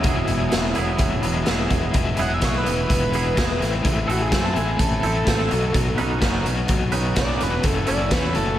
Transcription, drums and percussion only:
0.04 kick, closed hi-hat
0.28 closed hi-hat
0.52 snare, closed hi-hat
0.75 closed hi-hat
0.98 kick, closed hi-hat
1.23 closed hi-hat
1.46 snare, closed hi-hat
1.70 kick, closed hi-hat
1.94 kick, closed hi-hat
2.17 closed hi-hat
2.41 kick, snare, closed hi-hat
2.66 closed hi-hat
2.90 kick, closed hi-hat
3.13 closed hi-hat
3.37 kick, snare, closed hi-hat
3.62 snare, closed hi-hat
3.85 kick, closed hi-hat
4.09 closed hi-hat
4.32 kick, snare, closed hi-hat
4.56 closed hi-hat
4.79 kick, closed hi-hat
5.03 closed hi-hat
5.27 kick, snare, closed hi-hat
5.51 closed hi-hat
5.74 kick, closed hi-hat
5.98 closed hi-hat
6.21 kick, snare, closed hi-hat
6.46 closed hi-hat
6.68 kick, closed hi-hat
6.92 closed hi-hat
7.16 kick, snare, closed hi-hat
7.41 snare, closed hi-hat
7.63 kick, closed hi-hat
7.87 closed hi-hat
8.11 kick, snare, closed hi-hat
8.35 closed hi-hat

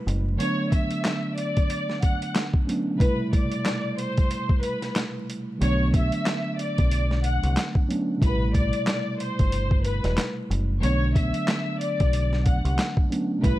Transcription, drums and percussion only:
0.08 closed hi-hat
0.40 closed hi-hat
0.72 kick, closed hi-hat
0.91 closed hi-hat
1.05 snare, clap, closed hi-hat
1.38 closed hi-hat
1.57 kick, closed hi-hat
1.70 closed hi-hat
1.89 snare
2.02 kick, closed hi-hat
2.22 closed hi-hat
2.35 snare, clap, closed hi-hat
2.54 kick
2.69 closed hi-hat
3.00 kick, closed hi-hat
3.33 kick, closed hi-hat
3.52 closed hi-hat
3.66 snare, clap, closed hi-hat
3.98 closed hi-hat
4.17 kick, closed hi-hat
4.31 closed hi-hat
4.49 kick
4.63 closed hi-hat
4.82 snare, closed hi-hat
4.96 snare, clap, closed hi-hat
5.30 closed hi-hat
5.62 closed hi-hat
5.94 kick, closed hi-hat
6.12 closed hi-hat
6.26 snare, clap, closed hi-hat
6.59 closed hi-hat
6.78 kick, closed hi-hat
6.91 closed hi-hat
7.11 snare
7.24 closed hi-hat
7.43 closed hi-hat
7.57 snare, clap, closed hi-hat
7.75 kick
7.90 closed hi-hat
8.22 kick, closed hi-hat
8.54 kick, closed hi-hat
8.73 closed hi-hat
8.87 snare, clap, closed hi-hat
9.20 closed hi-hat
9.39 kick, closed hi-hat
9.52 closed hi-hat
9.71 kick
9.85 closed hi-hat
10.04 snare, closed hi-hat
10.18 snare, clap, closed hi-hat
10.51 closed hi-hat
10.83 closed hi-hat
11.15 kick, closed hi-hat
11.34 closed hi-hat
11.48 snare, clap, closed hi-hat
11.81 closed hi-hat
12.00 kick, closed hi-hat
12.13 closed hi-hat
12.33 snare
12.46 kick, closed hi-hat
12.65 closed hi-hat
12.79 snare, clap, closed hi-hat
12.97 kick
13.12 closed hi-hat
13.44 kick, closed hi-hat

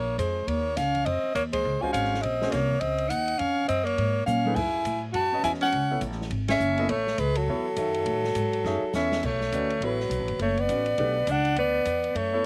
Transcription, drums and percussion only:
0.19 hi-hat pedal, ride
0.48 ride
0.77 snare, hi-hat pedal, ride
0.95 kick, ride
1.06 ride
1.35 hi-hat pedal, ride
1.53 kick, ride
1.83 kick
1.94 hi-hat pedal, ride
2.05 snare
2.14 snare
2.23 ride
2.42 snare
2.52 snare, hi-hat pedal, ride
2.70 kick
2.81 ride
2.98 ride
3.10 hi-hat pedal, ride
3.28 ride
3.39 ride
3.69 hi-hat pedal, ride
3.87 ride
3.98 ride
4.27 hi-hat pedal, mid tom
4.45 mid tom
4.56 kick, crash
4.85 hi-hat pedal, ride
5.14 ride
5.44 hi-hat pedal, ride
5.54 snare
5.61 snare, ride
5.72 ride
6.01 hi-hat pedal, ride
6.12 snare
6.21 snare
6.31 ride
6.48 snare, ride
6.60 hi-hat pedal
6.78 ride
6.89 ride
7.07 snare
7.18 hi-hat pedal, ride
7.35 ride
7.76 hi-hat pedal, ride
7.94 ride
8.06 ride
8.24 snare
8.35 hi-hat pedal, ride
8.53 ride
8.65 snare
8.93 snare, hi-hat pedal
9.12 snare
9.23 kick, crash
9.41 snare
9.52 hi-hat pedal, ride
9.70 ride
9.82 ride
10.00 snare
10.11 hi-hat pedal, ride
10.28 ride
10.39 ride
10.57 ride
10.69 hi-hat pedal, ride
10.86 ride
10.98 ride
11.27 hi-hat pedal, ride
11.45 ride
11.56 ride
11.85 hi-hat pedal, ride
12.04 ride
12.16 ride

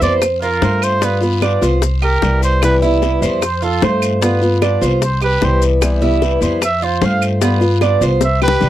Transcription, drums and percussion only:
0.02 short guiro, maracas
0.22 high bongo, long guiro, claves, maracas
0.42 maracas
0.62 high bongo, low bongo, short guiro, maracas
0.82 short guiro, claves, maracas
1.02 high bongo, long guiro, maracas
1.22 high bongo, maracas
1.42 high bongo, short guiro, claves, maracas
1.62 high bongo, short guiro, maracas
1.82 high bongo, long guiro, maracas
2.02 claves, maracas
2.22 high bongo, low bongo, short guiro, maracas
2.42 high bongo, short guiro, maracas
2.62 high bongo, long guiro, claves, maracas
2.83 maracas
3.02 high bongo, short guiro, maracas
3.22 short guiro, maracas
3.42 high bongo, long guiro, claves, maracas
3.62 maracas
3.82 high bongo, low bongo, short guiro, maracas
4.02 short guiro, claves, maracas
4.22 high bongo, long guiro, maracas
4.42 high bongo, maracas
4.62 high bongo, short guiro, claves, maracas
4.82 high bongo, short guiro, maracas
5.02 high bongo, long guiro, maracas
5.22 claves, maracas
5.42 high bongo, low bongo, short guiro, maracas
5.62 high bongo, short guiro, maracas
5.82 high bongo, long guiro, claves, maracas
6.02 maracas
6.22 high bongo, short guiro, maracas
6.42 short guiro, maracas
6.61 high bongo, long guiro, claves, maracas
6.83 maracas
7.02 high bongo, low bongo, short guiro, maracas
7.21 short guiro, claves, maracas
7.42 high bongo, long guiro, maracas
7.61 high bongo, maracas
7.81 high bongo, short guiro, claves, maracas
8.01 high bongo, short guiro, maracas
8.21 high bongo, long guiro, maracas
8.42 claves, maracas
8.48 low bongo
8.61 low bongo, short guiro, maracas

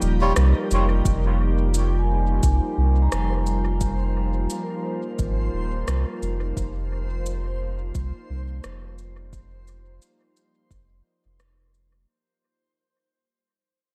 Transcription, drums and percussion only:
0.02 cabasa
0.36 cross-stick, cabasa
0.71 cabasa
1.05 kick, cabasa
1.74 cabasa
2.43 kick, cabasa
3.12 cross-stick, cabasa
3.46 cabasa
3.81 kick, cabasa
4.50 cabasa
5.19 kick, cabasa
5.88 cross-stick, cabasa
6.23 cabasa
6.57 kick, cabasa
7.26 cabasa
7.95 kick, cabasa
8.64 cross-stick, cabasa
8.98 cabasa
9.33 kick, cabasa
9.68 cabasa
10.02 cabasa
10.37 cabasa
10.71 kick, cabasa
11.40 cross-stick, cabasa
11.74 cabasa

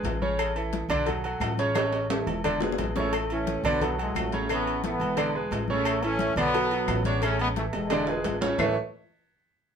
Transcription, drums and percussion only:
0.05 cowbell, high conga, low timbale, low agogo
0.22 high conga
0.39 cowbell, low agogo, claves
0.56 high conga, low agogo
0.73 cowbell, high conga, low timbale
0.90 high conga, low conga, low agogo, claves
1.06 cowbell, high conga, low conga, low agogo
1.24 high conga, low agogo
1.41 cowbell, high conga, low timbale, low agogo, claves
1.58 cowbell, high conga
1.75 cowbell, high conga, high timbale, low agogo, claves
1.93 high timbale, low agogo
2.10 cowbell, high conga, high timbale
2.27 low timbale, low agogo
2.44 cowbell, low conga, low agogo, claves
2.60 high bongo, low timbale
2.72 high bongo
2.78 cowbell, low conga, low agogo
2.84 low bongo
2.96 low bongo, low conga, low timbale
3.13 cowbell, high conga, low agogo, claves
3.30 high conga, low agogo
3.47 cowbell, high conga, low timbale
3.64 high conga, low conga, low agogo, claves
3.81 cowbell, high conga, low conga, low agogo
3.98 high conga, low agogo
4.15 cowbell, high conga, low timbale, low agogo, claves
4.32 cowbell, high conga
4.49 cowbell, high conga, low agogo, claves
4.67 high conga, low agogo
4.84 cowbell, high conga, low timbale
5.01 high conga, low agogo
5.17 cowbell, high conga, low agogo, claves
5.35 high conga
5.51 cowbell, high conga, low timbale, low agogo
5.68 high conga
5.85 cowbell, low agogo, claves
6.03 high conga, low agogo
6.19 cowbell, high conga, low timbale
6.36 high conga, low conga, low agogo, claves
6.54 cowbell, low agogo
6.71 high conga, low agogo
6.88 cowbell, high conga, low timbale, low agogo, claves
7.04 cowbell, high conga
7.22 cowbell, low agogo, claves
7.39 high conga, low agogo
7.56 cowbell, high conga, low timbale
7.73 high timbale, low agogo
7.90 cowbell, high conga, high timbale, low agogo, claves
8.07 high conga, low timbale
8.24 cowbell, high conga, low timbale, low agogo
8.42 high conga, low timbale
8.58 low bongo, low conga, low timbale, claves

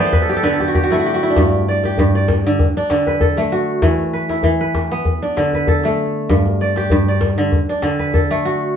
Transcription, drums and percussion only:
0.13 djembe slap, djembe bass
0.44 djembe slap
0.60 djembe tone
0.74 djembe slap, djembe bass
0.90 djembe slap
1.36 djembe slap, djembe bass
1.53 djembe tone
1.83 djembe slap
1.98 djembe bass
2.28 djembe slap, djembe tone
2.59 djembe slap, djembe bass
2.76 djembe slap
2.90 djembe slap
3.07 djembe slap, djembe tone
3.21 djembe bass
3.37 djembe slap
3.82 djembe slap, djembe bass
3.99 djembe tone
4.29 djembe slap
4.43 djembe bass
4.75 djembe slap, djembe tone
5.05 djembe slap, djembe bass
5.22 djembe slap
5.37 djembe slap
5.53 djembe slap, djembe tone
5.67 djembe bass
5.83 djembe slap
6.30 djembe slap, djembe bass
6.46 djembe tone
6.76 djembe slap
6.90 djembe bass
7.21 djembe slap, djembe tone
7.52 djembe slap, djembe bass
7.68 djembe slap
7.82 djembe slap
7.99 djembe slap, djembe tone
8.14 djembe bass
8.31 djembe slap

